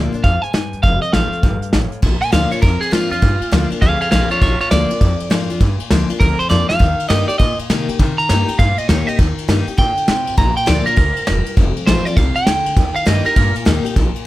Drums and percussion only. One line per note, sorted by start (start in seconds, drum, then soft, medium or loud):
0.14 closed hi-hat medium
0.24 kick loud
0.24 closed hi-hat medium
0.43 closed hi-hat medium
0.54 snare loud
0.54 closed hi-hat medium
0.73 closed hi-hat medium
0.84 kick loud
0.84 closed hi-hat medium
1.03 closed hi-hat medium
1.13 snare loud
1.13 closed hi-hat medium
1.33 closed hi-hat medium
1.43 kick loud
1.43 closed hi-hat medium
1.62 closed hi-hat medium
1.73 snare loud
1.73 closed hi-hat medium
1.92 closed hi-hat medium
2.03 kick loud
2.03 crash loud
2.22 ride medium
2.33 snare loud
2.33 ride medium
2.52 ride medium
2.63 kick loud
2.63 ride medium
2.82 ride medium
2.93 snare loud
2.93 ride medium
3.12 ride medium
3.22 kick loud
3.22 ride medium
3.42 ride medium
3.52 snare loud
3.52 ride medium
3.71 ride medium
3.82 kick loud
3.82 ride medium
4.01 ride medium
4.12 snare loud
4.12 ride medium
4.31 ride medium
4.42 kick loud
4.42 ride medium
4.61 ride medium
4.71 snare loud
4.71 ride medium
4.90 ride medium
5.01 kick loud
5.01 ride medium
5.20 ride medium
5.31 snare loud
5.31 ride loud
5.50 ride medium
5.60 kick loud
5.60 ride medium
5.80 ride medium
5.90 snare loud
5.90 ride medium
6.10 ride medium
6.21 kick loud
6.21 ride medium
6.40 ride medium
6.51 snare medium
6.70 snare medium
6.80 kick loud
6.80 ride medium
7.00 ride medium
7.10 snare loud
7.10 ride medium
7.29 ride medium
7.40 kick loud
7.40 ride medium
7.59 ride medium
7.70 snare loud
7.70 ride medium
7.89 ride medium
7.99 kick loud
7.99 ride medium
8.19 ride medium
8.29 snare loud
8.29 ride medium
8.48 ride medium
8.59 kick loud
8.59 ride medium
8.78 ride medium
8.89 snare loud
8.89 ride medium
9.08 ride medium
9.19 kick loud
9.19 ride medium
9.38 ride medium
9.49 snare loud
9.49 ride medium
9.68 ride medium
9.78 kick loud
9.78 ride medium
9.97 ride medium
10.08 snare loud
10.08 ride medium
10.27 ride medium
10.38 kick loud
10.38 ride medium
10.57 ride medium
10.67 snare loud
10.67 ride loud
10.86 ride medium
10.97 kick loud
10.97 ride loud
11.16 ride medium
11.27 snare loud
11.27 ride medium
11.46 ride medium
11.57 kick loud
11.57 ride medium
11.76 ride medium
11.87 snare loud
11.87 ride medium
12.06 ride medium
12.17 kick loud
12.17 ride medium
12.36 ride medium
12.47 snare loud
12.47 ride medium
12.66 ride medium
12.76 kick loud
12.76 ride medium
12.96 ride medium
13.06 snare loud
13.06 ride medium
13.26 ride medium
13.36 kick loud
13.36 ride medium
13.55 ride medium
13.66 snare loud
13.66 ride medium
13.86 ride medium
13.96 kick loud
13.96 ride medium
14.16 ride medium